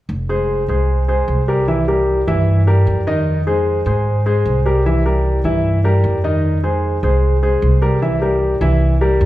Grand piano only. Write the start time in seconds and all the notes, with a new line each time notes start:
0.29 G#3 G#4 C5
0.69 G#3 G#4 C5
1.08 G#3 G#4 C5
1.48 G3 G4 A#4
1.68 E3 E4 E5
1.88 G3 G4 A#4
2.27 E3 E4 E5
2.67 G3 G4 A#4
3.07 D#3 D#4 D#5
3.47 G#3 G#4 C5
3.86 G#3 G#4 C5
4.26 G#3 G#4 C5
4.66 G3 G4 A#4
4.86 E3 E4 E5
5.05 G3 G4 A#4
5.45 E3 E4 E5
5.84 G3 G4 A#4
6.24 D#3 D#4 D#5
6.63 G#3 G#4 C5
7.03 G#3 G#4 C5
7.43 G#3 G#4 C5
7.82 G3 G4 A#4
8.02 E3 E4 E5
8.22 G3 G4 A#4
8.61 E3 E4 E5
9.01 G3 G4 A#4